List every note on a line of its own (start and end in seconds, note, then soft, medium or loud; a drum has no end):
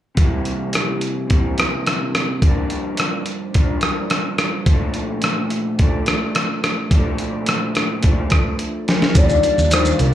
0.15 1.26 C3 medium
0.15 1.30 G3 medium
0.15 kick loud
0.15 closed hi-hat medium
0.19 1.32 A#3 medium
0.19 1.31 E4 medium
0.45 closed hi-hat soft
0.73 cross-stick medium
0.73 closed hi-hat medium
1.01 closed hi-hat soft
1.28 2.41 C3 medium
1.28 2.43 G3 medium
1.28 kick medium
1.28 closed hi-hat medium
1.32 2.45 A#3 medium
1.32 2.44 E4 medium
1.58 cross-stick medium
1.58 closed hi-hat soft
1.86 cross-stick medium
1.86 closed hi-hat medium
2.15 cross-stick medium
2.15 closed hi-hat soft
2.41 3.52 G2 medium
2.41 3.56 F3 medium
2.41 kick loud
2.41 closed hi-hat medium
2.45 3.57 A#3 medium
2.45 3.58 D4 medium
2.70 closed hi-hat soft
2.97 cross-stick medium
2.97 closed hi-hat medium
3.26 closed hi-hat soft
3.53 4.66 G2 medium
3.53 4.68 F3 medium
3.53 kick medium
3.53 closed hi-hat medium
3.58 4.70 A#3 medium
3.58 4.71 D4 medium
3.81 cross-stick medium
3.81 closed hi-hat soft
4.10 cross-stick medium
4.10 closed hi-hat medium
4.38 cross-stick medium
4.38 closed hi-hat soft
4.66 5.77 A#2 medium
4.66 5.79 F3 medium
4.66 kick loud
4.66 closed hi-hat medium
4.70 5.79 A3 medium
4.70 5.81 D4 medium
4.94 closed hi-hat soft
5.22 cross-stick medium
5.22 closed hi-hat medium
5.50 closed hi-hat soft
5.78 6.07 A#2 medium
5.78 6.07 F3 medium
5.78 6.07 A3 medium
5.78 6.05 D4 medium
5.78 kick medium
5.78 closed hi-hat medium
6.06 6.91 F3 soft
6.06 6.92 A3 soft
6.06 6.94 D4 soft
6.06 cross-stick medium
6.06 closed hi-hat soft
6.35 cross-stick medium
6.35 closed hi-hat medium
6.64 cross-stick medium
6.64 closed hi-hat soft
6.89 8.01 A#2 medium
6.89 8.03 F3 medium
6.89 kick loud
6.89 closed hi-hat medium
6.93 8.03 A3 medium
6.93 8.05 D4 medium
7.18 closed hi-hat soft
7.46 cross-stick medium
7.46 closed hi-hat medium
7.75 cross-stick medium
7.75 closed hi-hat soft
8.02 8.31 A#2 medium
8.02 8.31 F3 medium
8.02 8.32 A3 medium
8.02 8.29 D4 medium
8.02 kick medium
8.02 closed hi-hat medium
8.30 9.16 A3 soft
8.30 9.16 D4 soft
8.30 kick medium
8.30 cross-stick medium
8.30 closed hi-hat soft
8.35 9.15 F3 soft
8.59 closed hi-hat medium
8.88 9.18 A#4 medium
8.88 snare medium
8.88 closed hi-hat soft
9.02 snare medium
9.14 9.38 D#2 loud
9.14 9.43 D#3 medium
9.14 9.43 G3 medium
9.14 9.43 D4 medium
9.14 9.42 F4 medium
9.14 9.74 D5 loud
9.14 kick loud
9.14 closed hi-hat medium
9.14 shaker medium
9.29 shaker soft
9.43 9.71 G3 soft
9.43 9.72 D4 medium
9.43 9.71 F4 medium
9.43 closed hi-hat soft
9.43 shaker soft
9.58 9.91 D#2 medium
9.58 shaker medium
9.70 9.99 D#3 medium
9.70 10.00 G3 medium
9.70 9.99 D4 medium
9.70 10.02 C5 loud
9.70 cross-stick medium
9.70 closed hi-hat medium
9.70 shaker medium
9.74 9.97 F4 medium
9.85 shaker medium
9.98 10.14 C2 medium
9.98 10.14 D4 medium
9.98 10.14 F4 medium
9.98 10.14 A#4 medium
9.98 closed hi-hat soft
9.98 shaker medium
10.02 10.14 G3 soft